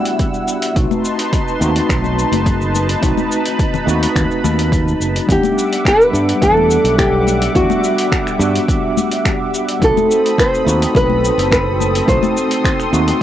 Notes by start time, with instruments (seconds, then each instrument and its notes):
Already playing: analog synth pad G3 E4 F#5 E6, tine electric piano G3 B3 D4 F#4
0.05 closed hi-hat, cabasa
0.19 kick, closed hi-hat, cabasa
0.34 cabasa
0.48 cabasa
0.62 closed hi-hat, cabasa
0.73 fingered electric bass B1, tine electric piano A3 C4 D#4, analog synth pad D#4 C6, kick, closed hi-hat, cabasa
0.77 tine electric piano F#4, analog synth pad B4 A5
0.91 high conga, cabasa
1.05 cabasa
1.19 closed hi-hat, cabasa
1.33 kick, closed hi-hat, cabasa
1.48 cabasa
1.59 fingered electric bass D#2, tine electric piano A3 C4 D#4, cabasa
1.64 tine electric piano F#4
1.76 closed hi-hat, cabasa
1.89 fingered electric bass B1, finger snap, kick, closed hi-hat, cabasa
2.04 high conga, cabasa
2.19 cabasa
2.32 fingered electric bass F#1, closed hi-hat, high conga, cabasa
2.46 kick, closed hi-hat, cabasa
2.61 cabasa
2.75 high conga, cabasa
2.89 closed hi-hat, cabasa
3.00 fingered electric bass B1, tine electric piano A3 C4 D#4, analog synth pad B5, kick, closed hi-hat, cabasa
3.05 tine electric piano F#4
3.17 high conga, cabasa
3.32 cabasa
3.45 closed hi-hat, cabasa
3.59 kick, closed hi-hat, cabasa
3.74 low conga, cabasa
3.86 fingered electric bass D#2, tine electric piano A3 C4 D#4, cabasa
3.91 tine electric piano F#4
4.03 closed hi-hat, cabasa
4.16 fingered electric bass D#2, finger snap, kick, closed hi-hat, cabasa
4.31 cabasa
4.44 fingered electric bass D#2, high conga, cabasa
4.59 closed hi-hat, cabasa
4.72 kick, closed hi-hat, cabasa
4.88 cabasa
5.00 fingered electric bass F#1, cabasa
5.16 closed hi-hat, cabasa
5.27 fingered electric bass E2, tine electric piano G3 B3 D4, analog synth pad G3 E5 F#5 D6, kick, closed hi-hat, cabasa
5.32 nylon-string guitar G4, tine electric piano F#5
5.43 high conga, cabasa
5.59 cabasa
5.73 closed hi-hat, cabasa
5.85 nylon-string guitar B4, finger snap, kick, closed hi-hat, cabasa
6.01 cabasa
6.11 fingered electric bass G2, tine electric piano G3 B3 D4, cabasa
6.16 tine electric piano F#5
6.29 closed hi-hat, cabasa
6.42 fingered electric bass E2, nylon-string guitar A4, kick, closed hi-hat, cabasa
6.57 high conga
6.71 cabasa
6.84 fingered electric bass B1, closed hi-hat, cabasa
6.98 nylon-string guitar G4, finger snap, kick, closed hi-hat, cabasa
7.27 high conga, cabasa
7.42 closed hi-hat, cabasa
7.52 fingered electric bass E2, tine electric piano G3 B3 D4, nylon-string guitar F#4, kick, closed hi-hat, cabasa
7.57 tine electric piano F#4
7.70 high conga, cabasa
7.84 cabasa
7.98 closed hi-hat, cabasa
8.12 finger snap, kick, closed hi-hat, cabasa
8.27 finger snap, cabasa
8.38 fingered electric bass G2, tine electric piano G3 B3 D4, cabasa
8.43 tine electric piano F#4
8.55 closed hi-hat, cabasa
8.68 kick, closed hi-hat, cabasa
8.97 high conga, cabasa
9.12 closed hi-hat, cabasa
9.25 finger snap, kick, closed hi-hat, cabasa
9.54 cabasa
9.69 closed hi-hat, cabasa
9.79 fingered electric bass B1, tine electric piano A3 C4 D#4, analog synth pad C4 A4 B5 D#6, kick, closed hi-hat, cabasa
9.84 tine electric piano F#4, nylon-string guitar A4
9.97 high conga, cabasa
10.11 cabasa
10.26 closed hi-hat, cabasa
10.38 nylon-string guitar C5, finger snap, kick, closed hi-hat, cabasa
10.54 cabasa
10.64 fingered electric bass D#2, tine electric piano A3 C4 D#4, cabasa
10.69 tine electric piano F#4
10.82 closed hi-hat, cabasa
10.95 fingered electric bass B1, nylon-string guitar B4, kick, closed hi-hat, cabasa
11.10 high conga
11.25 cabasa
11.38 fingered electric bass F#1, closed hi-hat, cabasa
11.51 nylon-string guitar B4, finger snap, kick, closed hi-hat, cabasa
11.80 high conga, cabasa
11.95 closed hi-hat, cabasa
12.05 fingered electric bass B1, tine electric piano A3 C4 D#4, nylon-string guitar C5, analog synth pad C6, kick, closed hi-hat
12.09 tine electric piano F#4, cabasa
12.23 high conga, cabasa
12.37 cabasa
12.51 closed hi-hat, cabasa
12.65 finger snap, kick, closed hi-hat, cabasa
12.80 finger snap, cabasa
12.92 fingered electric bass D#2, tine electric piano A3 C4 D#4 F#4, cabasa
13.08 closed hi-hat, cabasa